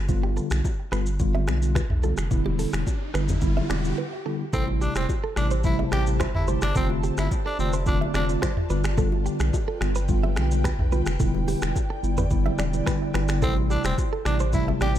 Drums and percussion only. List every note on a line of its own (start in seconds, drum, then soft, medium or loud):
0.08 kick loud
0.08 low conga medium
0.08 shaker medium
0.23 high bongo medium
0.36 low bongo medium
0.36 shaker medium
0.51 finger snap medium
0.51 cross-stick medium
0.51 shaker medium
0.64 kick medium
0.64 high bongo medium
0.64 shaker medium
0.92 finger snap medium
0.92 cross-stick medium
0.92 shaker medium
1.06 shaker medium
1.19 kick loud
1.19 low conga medium
1.19 shaker medium
1.35 low bongo medium
1.47 finger snap medium
1.47 cross-stick medium
1.47 low bongo medium
1.47 shaker medium
1.62 shaker medium
1.75 finger snap medium
1.75 kick medium
1.75 cross-stick medium
1.75 high bongo medium
1.75 low conga medium
1.75 shaker medium
1.90 mid tom loud
2.03 high bongo medium
2.03 shaker medium
2.17 finger snap medium
2.17 cross-stick medium
2.17 shaker medium
2.31 kick loud
2.31 low conga medium
2.31 shaker medium
2.46 high bongo medium
2.59 open hi-hat medium
2.59 low bongo medium
2.59 shaker medium
2.73 finger snap medium
2.73 cross-stick loud
2.73 shaker medium
2.87 kick medium
2.87 high bongo medium
2.87 shaker medium
3.14 finger snap medium
3.14 cross-stick medium
3.14 shaker medium
3.28 mid tom medium
3.28 low bongo medium
3.28 shaker medium
3.42 kick loud
3.42 low conga medium
3.42 shaker medium
3.57 low bongo medium
3.70 finger snap medium
3.70 cross-stick medium
3.70 low bongo medium
3.70 shaker medium
3.85 shaker medium
4.53 kick loud
4.53 low conga medium
4.53 shaker medium
4.68 high bongo medium
4.82 shaker medium
4.95 finger snap medium
4.95 cross-stick loud
4.95 shaker medium
5.09 kick medium
5.09 high bongo medium
5.09 shaker medium
5.36 finger snap medium
5.36 cross-stick medium
5.36 shaker medium
5.51 shaker medium
5.64 kick loud
5.64 low conga medium
5.64 shaker medium
5.79 low bongo medium
5.92 finger snap medium
5.92 cross-stick loud
5.92 low bongo medium
5.92 shaker medium
6.07 shaker medium
6.20 finger snap medium
6.20 kick medium
6.20 cross-stick loud
6.20 high bongo medium
6.20 low conga medium
6.20 shaker medium
6.35 mid tom loud
6.48 high bongo medium
6.48 shaker medium
6.62 finger snap medium
6.62 cross-stick loud
6.62 shaker medium
6.75 kick loud
6.75 low conga medium
6.75 shaker medium
6.90 high bongo medium
7.04 shaker medium
7.17 finger snap medium
7.17 cross-stick medium
7.17 shaker medium
7.31 kick medium
7.31 high bongo medium
7.31 shaker medium
7.59 shaker medium
7.73 shaker medium
7.86 kick loud
7.86 low conga medium
7.86 shaker medium
8.02 low bongo medium
8.14 finger snap medium
8.14 cross-stick medium
8.14 low bongo medium
8.14 shaker medium
8.29 shaker medium
8.42 finger snap medium
8.42 kick medium
8.42 cross-stick medium
8.42 high bongo medium
8.42 low conga medium
8.42 shaker medium
8.57 mid tom medium
8.70 high bongo medium
8.70 shaker medium
8.84 finger snap medium
8.84 cross-stick loud
8.84 shaker medium
8.97 kick loud
8.97 low conga medium
8.97 shaker medium
9.12 high bongo medium
9.26 shaker medium
9.40 finger snap medium
9.40 cross-stick medium
9.40 shaker medium
9.53 kick medium
9.53 high bongo medium
9.53 shaker medium
9.81 finger snap medium
9.81 cross-stick medium
9.81 shaker medium
9.95 shaker medium
10.08 kick loud
10.08 low conga medium
10.08 shaker medium
10.24 low bongo medium
10.36 finger snap medium
10.36 cross-stick loud
10.36 low bongo medium
10.36 shaker medium
10.51 shaker medium
10.64 finger snap medium
10.64 kick loud
10.64 cross-stick medium
10.64 high bongo medium
10.64 low conga medium
10.64 shaker medium
10.79 mid tom medium
10.92 high bongo medium
10.92 shaker medium
11.06 finger snap medium
11.06 cross-stick medium
11.06 shaker medium
11.20 kick loud
11.20 low conga medium
11.20 shaker medium
11.34 high bongo medium
11.48 open hi-hat medium
11.48 low bongo medium
11.48 shaker medium
11.62 finger snap medium
11.62 cross-stick loud
11.62 shaker medium
11.76 kick medium
11.76 high bongo medium
11.76 shaker medium
12.04 shaker medium
12.17 mid tom medium
12.17 low bongo medium
12.17 shaker medium
12.30 kick loud
12.30 low conga medium
12.30 shaker medium
12.46 low bongo medium
12.59 finger snap medium
12.59 cross-stick medium
12.59 low bongo medium
12.59 shaker medium
12.73 shaker medium
12.86 finger snap medium
12.86 kick medium
12.86 cross-stick loud
12.86 high bongo medium
12.86 low conga medium
12.86 shaker medium
13.14 finger snap medium
13.14 cross-stick loud
13.14 high bongo medium
13.14 shaker medium
13.28 finger snap medium
13.28 cross-stick loud
13.28 shaker medium
13.42 kick loud
13.42 low conga medium
13.42 shaker medium
13.57 high bongo medium
13.70 shaker medium
13.84 finger snap medium
13.84 cross-stick loud
13.84 shaker medium
13.98 kick medium
13.98 high bongo medium
13.98 shaker medium
14.25 finger snap medium
14.25 cross-stick medium
14.25 shaker medium
14.40 shaker medium
14.53 kick loud
14.53 low conga medium
14.53 shaker medium
14.69 low bongo medium
14.81 finger snap medium
14.81 cross-stick medium
14.81 low bongo medium
14.81 shaker medium
14.96 shaker medium